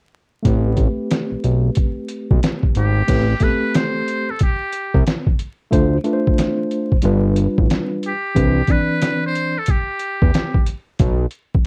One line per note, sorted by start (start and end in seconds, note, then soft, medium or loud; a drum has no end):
0.43 0.88 A1 medium
0.43 3.03 A3 medium
0.43 3.04 C4 medium
0.43 3.05 G4 medium
0.43 kick medium
0.43 closed hi-hat medium
0.47 3.06 B4 medium
0.77 kick medium
0.77 closed hi-hat medium
1.11 snare loud
1.11 closed hi-hat medium
1.32 1.37 B1 soft
1.44 1.70 B1 medium
1.44 closed hi-hat medium
1.75 kick medium
1.75 closed hi-hat medium
2.08 closed hi-hat medium
2.31 2.40 B1 medium
2.31 kick medium
2.43 snare loud
2.43 closed hi-hat medium
2.63 kick medium
2.75 3.03 G#1 medium
2.75 3.45 G4 medium
2.75 closed hi-hat medium
3.08 3.35 A1 medium
3.08 3.32 A3 medium
3.08 3.32 C4 medium
3.08 3.33 G4 medium
3.08 3.33 B4 medium
3.08 kick loud
3.08 closed hi-hat medium
3.08 crash medium
3.40 4.28 A3 medium
3.40 3.50 B3 medium
3.40 4.29 G4 medium
3.40 4.29 A4 medium
3.40 3.77 B4 medium
3.40 kick medium
3.40 closed hi-hat medium
3.48 4.32 C4 medium
3.75 4.32 C5 medium
3.75 snare loud
3.75 closed hi-hat medium
4.08 closed hi-hat medium
4.31 4.42 A4 medium
4.39 5.04 G4 medium
4.39 kick medium
4.39 closed hi-hat medium
4.72 closed hi-hat medium
4.94 5.04 C2 medium
4.94 kick medium
5.07 snare loud
5.07 closed hi-hat medium
5.27 kick medium
5.39 closed hi-hat medium
5.71 5.99 D2 loud
5.71 5.95 A3 medium
5.71 5.96 D4 medium
5.71 5.96 F4 medium
5.71 5.97 C5 loud
5.71 kick medium
5.71 closed hi-hat medium
6.04 6.92 A3 medium
6.04 6.92 D4 medium
6.04 6.93 F4 medium
6.04 6.14 B4 medium
6.04 closed hi-hat medium
6.13 6.96 C5 medium
6.27 kick medium
6.38 snare medium
6.38 closed hi-hat loud
6.71 closed hi-hat medium
6.92 kick medium
7.02 7.48 G1 loud
7.02 8.11 G3 medium
7.02 8.11 D4 medium
7.02 8.11 F4 medium
7.02 8.12 B4 medium
7.02 closed hi-hat medium
7.36 closed hi-hat medium
7.58 7.68 A1 medium
7.58 kick medium
7.70 snare loud
7.70 closed hi-hat medium
8.03 8.73 G4 medium
8.03 closed hi-hat medium
8.35 8.62 C2 medium
8.35 8.59 E3 medium
8.35 8.59 C4 medium
8.35 8.60 D4 medium
8.35 8.60 B4 medium
8.35 kick loud
8.35 closed hi-hat medium
8.67 9.55 E3 medium
8.67 9.56 C4 medium
8.67 9.56 D4 medium
8.67 9.57 D5 medium
8.67 kick medium
8.67 closed hi-hat medium
8.72 9.24 B4 loud
9.02 snare medium
9.02 closed hi-hat loud
9.26 9.60 C5 medium
9.35 closed hi-hat medium
9.59 9.72 A4 medium
9.66 kick medium
9.66 closed hi-hat medium
9.70 10.68 G4 medium
9.99 closed hi-hat medium
10.22 10.32 E2 medium
10.22 kick medium
10.34 snare loud
10.34 closed hi-hat medium
10.54 kick medium
10.66 closed hi-hat medium
10.99 11.26 B1 medium
10.99 kick loud
10.99 closed hi-hat medium
11.31 closed hi-hat medium
11.55 kick medium